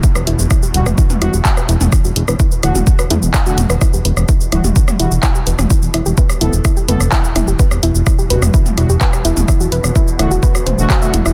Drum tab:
HH |--x---x---x---x-|--x---x---x---x-|--x---x---x---x-|--x---x---x---x-|
SH |xxxxxxxxxxxxxxxx|xxxxxxxxxxxxxxxx|xxxxxxxxxxxxxxxx|xxxxxxxxxxxxxxxx|
CP |------------x---|------------x---|------------x---|------------x---|
SD |-r--r--r--r--r--|r--r--r--r--r--r|r--r--r--r--r--r|--r--r--r--r--r-|
T2 |-------o-o-----o|-------o--o---o-|-------o-o-----o|----------o---o-|
BD |o---o---o---o---|o---o---o---o---|o---o---o---o---|o---o---o---o---|

HH |--x---x---x---x-|--x---x---x---x-|
SH |xxxxxxxxxxxxxxxx|xxxxxxxxxxxxxxxx|
CP |------------x---|------------x---|
SD |-r--r--r--r--r--|r--r--r--r--r--r|
T2 |-------o-o-----o|----------o---o-|
BD |o---o---o---o---|o---o---o---o---|